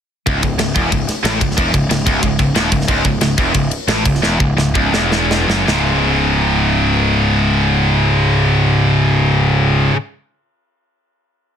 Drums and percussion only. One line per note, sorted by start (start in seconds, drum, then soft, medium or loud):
0.27 kick medium
0.27 ride medium
0.43 kick medium
0.43 ride medium
0.59 snare loud
0.59 ride loud
0.76 kick loud
0.76 ride medium
0.92 kick medium
0.92 ride loud
1.09 snare soft
1.09 ride medium
1.25 snare loud
1.25 ride loud
1.41 kick medium
1.41 ride medium
1.51 snare soft
1.58 kick loud
1.58 ride loud
1.74 kick medium
1.74 ride medium
1.91 snare loud
1.91 ride loud
2.07 kick medium
2.07 ride medium
2.23 kick medium
2.23 ride medium
2.39 kick medium
2.39 ride medium
2.55 snare loud
2.55 ride loud
2.72 kick medium
2.72 ride medium
2.81 snare soft
2.88 kick loud
2.88 ride loud
3.05 kick loud
3.05 ride medium
3.21 snare loud
3.21 ride loud
3.38 kick medium
3.38 ride medium
3.54 kick medium
3.54 ride loud
3.71 ride medium
3.88 snare loud
3.88 ride loud
4.06 kick loud
4.06 ride medium
4.15 snare soft
4.23 snare medium
4.40 kick medium
4.58 snare medium
4.75 kick medium
4.94 snare medium
5.12 snare medium
5.31 snare loud
5.50 snare medium
5.68 snare medium